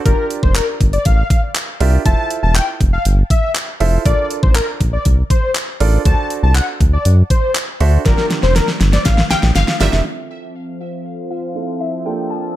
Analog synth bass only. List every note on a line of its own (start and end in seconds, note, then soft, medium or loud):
0.06 0.14 G1 loud
0.43 0.61 F1 medium
0.81 0.98 G1 loud
1.06 1.23 A1 loud
1.81 1.98 C2 loud
2.06 2.14 F1 loud
2.43 2.61 E1 loud
2.81 2.98 F1 loud
3.06 3.23 G1 loud
3.81 3.98 F1 loud
4.06 4.14 A#1 loud
4.43 4.61 A1 medium
4.81 4.98 A#1 medium
5.06 5.23 C2 loud
5.81 5.98 A1 medium
6.05 6.14 D2 loud
6.43 6.61 C2 medium
6.81 6.98 D2 loud
7.06 7.23 F#2 medium
7.81 7.98 D2 medium
8.06 8.14 G1 loud
8.43 8.61 F1 medium
8.81 8.98 G1 loud
9.06 9.23 A1 loud
9.31 9.36 A#1 soft
9.43 9.52 A#1 loud
9.56 9.64 G1 medium
9.81 9.89 G1 medium
9.93 10.02 F1 medium